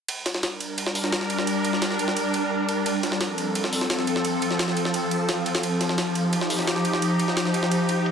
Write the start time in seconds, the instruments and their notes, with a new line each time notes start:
0.08 synth drone G3 D4 A#4, closed hi-hat, ride
0.26 snare, closed hi-hat, ride
0.34 snare
0.43 snare, closed hi-hat, ride
0.60 closed hi-hat, ride
0.78 closed hi-hat, ride
0.87 snare
0.95 closed hi-hat, open hi-hat
1.04 snare
1.12 snare, closed hi-hat, ride
1.21 snare
1.30 closed hi-hat, ride
1.39 snare
1.47 closed hi-hat, ride
1.65 closed hi-hat, ride
1.73 snare
1.82 snare, ride
1.91 snare
1.99 closed hi-hat, ride
2.08 snare
2.17 closed hi-hat, ride
2.34 closed hi-hat, ride
2.51 closed hi-hat
2.69 closed hi-hat, ride
2.86 synth drone F3 C4 A4, closed hi-hat, ride
3.03 snare, closed hi-hat, ride
3.12 snare
3.21 snare, closed hi-hat, ride
3.38 closed hi-hat, ride
3.55 closed hi-hat, ride
3.64 snare
3.73 closed hi-hat, open hi-hat
3.81 snare
3.90 snare, ride
3.99 snare
4.07 closed hi-hat, ride
4.16 snare
4.25 closed hi-hat, ride
4.42 closed hi-hat, ride
4.51 snare
4.59 snare, closed hi-hat, ride
4.68 snare
4.77 closed hi-hat, ride
4.85 snare
4.94 closed hi-hat, ride
5.11 closed hi-hat, ride
5.29 snare, closed hi-hat, ride
5.46 closed hi-hat, ride
5.55 snare, ride
5.63 synth drone D#4 G4, closed hi-hat, ride
5.81 snare, closed hi-hat, ride
5.89 snare
5.98 snare, closed hi-hat, ride
6.15 closed hi-hat, ride
6.33 closed hi-hat, ride
6.41 snare
6.50 closed hi-hat, open hi-hat
6.59 snare
6.67 snare, closed hi-hat, ride
6.76 snare
6.85 closed hi-hat, ride
6.93 snare
7.02 closed hi-hat, ride
7.19 closed hi-hat, ride
7.28 snare
7.37 snare, closed hi-hat, ride
7.45 snare
7.54 closed hi-hat, ride
7.63 snare
7.71 closed hi-hat, ride
7.89 closed hi-hat, ride
8.06 closed hi-hat